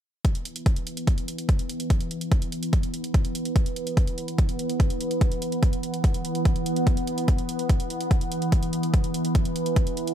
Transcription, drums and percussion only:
0.25 kick, closed hi-hat
0.35 closed hi-hat
0.45 closed hi-hat
0.56 closed hi-hat
0.66 kick, closed hi-hat
0.76 closed hi-hat
0.87 closed hi-hat
0.97 closed hi-hat
1.07 kick, closed hi-hat
1.18 closed hi-hat
1.28 closed hi-hat
1.38 closed hi-hat
1.49 kick, closed hi-hat
1.59 closed hi-hat
1.69 closed hi-hat
1.80 closed hi-hat
1.90 kick, closed hi-hat
2.01 closed hi-hat
2.11 closed hi-hat
2.21 closed hi-hat
2.32 kick, closed hi-hat
2.42 closed hi-hat
2.52 closed hi-hat
2.63 closed hi-hat
2.73 kick, closed hi-hat
2.83 closed hi-hat
2.94 closed hi-hat
3.04 closed hi-hat
3.14 kick, closed hi-hat
3.25 closed hi-hat
3.35 closed hi-hat
3.45 closed hi-hat
3.56 kick, closed hi-hat
3.66 closed hi-hat
3.76 closed hi-hat
3.87 closed hi-hat
3.97 kick, closed hi-hat
4.07 closed hi-hat
4.18 closed hi-hat
4.28 closed hi-hat
4.38 kick, closed hi-hat
4.49 closed hi-hat
4.59 closed hi-hat
4.70 closed hi-hat
4.80 kick, closed hi-hat
4.90 closed hi-hat
5.01 closed hi-hat
5.11 closed hi-hat
5.21 kick, closed hi-hat
5.32 closed hi-hat
5.42 closed hi-hat
5.52 closed hi-hat
5.63 kick, closed hi-hat
5.73 closed hi-hat
5.83 closed hi-hat
5.94 closed hi-hat
6.04 kick, closed hi-hat
6.14 closed hi-hat
6.25 closed hi-hat
6.35 closed hi-hat
6.45 kick, closed hi-hat
6.56 closed hi-hat
6.66 closed hi-hat
6.76 closed hi-hat
6.87 kick, closed hi-hat
6.97 closed hi-hat
7.07 closed hi-hat
7.18 closed hi-hat
7.28 kick, closed hi-hat
7.38 closed hi-hat
7.49 closed hi-hat
7.59 closed hi-hat
7.69 kick, closed hi-hat
7.80 closed hi-hat
7.90 closed hi-hat
8.01 closed hi-hat
8.11 kick, closed hi-hat
8.21 closed hi-hat
8.32 closed hi-hat
8.42 closed hi-hat
8.52 kick, closed hi-hat
8.63 closed hi-hat
8.73 closed hi-hat
8.83 closed hi-hat
8.94 kick, closed hi-hat
9.04 closed hi-hat
9.14 closed hi-hat
9.25 closed hi-hat
9.35 kick, closed hi-hat
9.45 closed hi-hat
9.56 closed hi-hat
9.66 closed hi-hat
9.76 kick, closed hi-hat
9.87 closed hi-hat
9.97 closed hi-hat
10.07 closed hi-hat

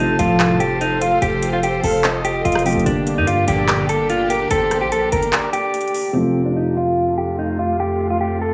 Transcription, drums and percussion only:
0.19 closed hi-hat
0.40 cross-stick, clap, closed hi-hat
0.60 closed hi-hat
0.81 closed hi-hat
1.01 closed hi-hat
1.22 closed hi-hat
1.42 closed hi-hat
1.63 closed hi-hat
1.84 open hi-hat
2.04 clap, closed hi-hat
2.25 closed hi-hat
2.45 closed hi-hat
2.52 cross-stick, closed hi-hat
2.59 closed hi-hat
2.66 closed hi-hat, open hi-hat
2.73 closed hi-hat
2.79 closed hi-hat
2.86 closed hi-hat
3.07 closed hi-hat
3.27 closed hi-hat
3.48 closed hi-hat
3.68 cross-stick, clap, closed hi-hat
3.89 closed hi-hat
4.10 closed hi-hat
4.30 closed hi-hat
4.51 closed hi-hat
4.71 cross-stick, closed hi-hat
4.92 closed hi-hat
5.12 closed hi-hat, open hi-hat
5.23 closed hi-hat
5.33 clap, closed hi-hat
5.53 closed hi-hat
5.74 closed hi-hat
5.81 closed hi-hat
5.88 closed hi-hat
5.94 open hi-hat

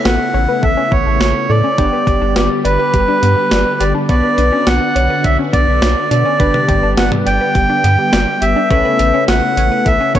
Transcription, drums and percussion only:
0.05 snare
0.63 kick
0.92 kick
1.21 snare
1.78 kick, closed hi-hat
2.07 kick, closed hi-hat
2.36 snare, closed hi-hat
2.65 closed hi-hat
2.94 kick, closed hi-hat
3.23 closed hi-hat
3.51 snare, closed hi-hat
3.81 closed hi-hat
4.09 kick, closed hi-hat
4.38 closed hi-hat
4.67 snare, closed hi-hat
4.96 closed hi-hat
5.24 kick, closed hi-hat
5.53 kick, closed hi-hat
5.82 snare, closed hi-hat
6.11 closed hi-hat
6.40 kick, closed hi-hat
6.54 mid tom
6.68 kick, closed hi-hat, mid tom
6.97 snare, closed hi-hat
7.12 mid tom
7.27 closed hi-hat
7.55 kick, closed hi-hat
7.84 closed hi-hat
8.13 snare, closed hi-hat
8.42 closed hi-hat
8.71 kick, closed hi-hat
8.99 closed hi-hat
9.28 snare, closed hi-hat
9.57 closed hi-hat
9.86 kick, closed hi-hat
10.15 kick, closed hi-hat

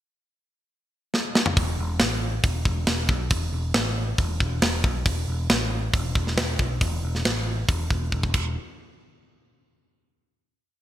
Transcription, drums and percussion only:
1.14 snare
1.35 snare
1.46 mid tom
1.57 kick, open hi-hat
1.99 snare, open hi-hat
2.43 kick, open hi-hat
2.65 kick
2.87 snare, open hi-hat
3.09 kick
3.30 kick, open hi-hat
3.74 snare, open hi-hat
4.18 kick, open hi-hat
4.40 kick
4.62 snare, open hi-hat
4.84 kick
5.06 kick, open hi-hat
5.50 snare, open hi-hat
5.94 kick, open hi-hat
6.15 kick
6.27 snare
6.37 snare, open hi-hat
6.59 kick
6.81 kick, open hi-hat
7.15 snare
7.25 snare, open hi-hat
7.68 kick, open hi-hat
7.90 kick
8.12 kick
8.23 kick
8.34 kick, crash

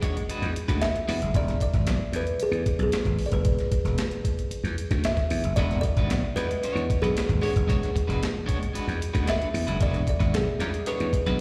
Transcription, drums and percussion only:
0.02 kick, closed hi-hat
0.17 closed hi-hat
0.29 closed hi-hat
0.43 snare, closed hi-hat
0.56 closed hi-hat
0.69 kick, snare, closed hi-hat
0.82 snare, closed hi-hat
0.96 closed hi-hat
1.09 open hi-hat
1.22 closed hi-hat
1.34 kick, closed hi-hat
1.48 snare, closed hi-hat
1.60 kick, closed hi-hat
1.74 kick, snare, closed hi-hat
1.87 snare, closed hi-hat
2.13 snare, closed hi-hat
2.27 closed hi-hat
2.40 closed hi-hat
2.53 closed hi-hat
2.66 kick, closed hi-hat
2.79 closed hi-hat
2.92 snare, closed hi-hat
3.05 kick, closed hi-hat
3.19 open hi-hat
3.32 kick, closed hi-hat
3.45 kick, closed hi-hat
3.59 snare, closed hi-hat
3.72 kick, closed hi-hat
3.85 snare, closed hi-hat
3.98 snare, closed hi-hat
4.11 closed hi-hat
4.25 kick, closed hi-hat
4.39 closed hi-hat
4.51 closed hi-hat
4.65 snare, closed hi-hat
4.78 closed hi-hat
4.91 kick, snare, closed hi-hat
5.04 snare, closed hi-hat
5.17 kick, snare, closed hi-hat
5.30 open hi-hat
5.44 closed hi-hat
5.57 kick, closed hi-hat
5.71 snare, closed hi-hat
5.83 kick, closed hi-hat
5.97 kick, snare, closed hi-hat
6.10 snare, closed hi-hat
6.37 snare, closed hi-hat
6.51 closed hi-hat
6.63 closed hi-hat
6.77 closed hi-hat
6.90 kick, closed hi-hat
7.04 closed hi-hat
7.17 snare, closed hi-hat
7.29 kick, closed hi-hat
7.43 open hi-hat
7.56 kick, closed hi-hat
7.70 kick, closed hi-hat
7.83 snare, closed hi-hat
7.96 kick, closed hi-hat
8.10 snare, closed hi-hat
8.23 snare, closed hi-hat
8.49 kick, closed hi-hat
8.63 closed hi-hat
8.75 closed hi-hat
8.89 snare, closed hi-hat
9.02 closed hi-hat
9.15 kick, snare, closed hi-hat
9.27 snare, closed hi-hat
9.42 closed hi-hat
9.55 open hi-hat
9.68 closed hi-hat
9.80 kick, closed hi-hat
9.94 snare, closed hi-hat
10.07 kick, closed hi-hat
10.20 kick, snare, closed hi-hat
10.34 snare, closed hi-hat
10.60 snare, closed hi-hat
10.74 closed hi-hat
10.86 closed hi-hat
11.00 closed hi-hat
11.13 kick, closed hi-hat
11.27 closed hi-hat

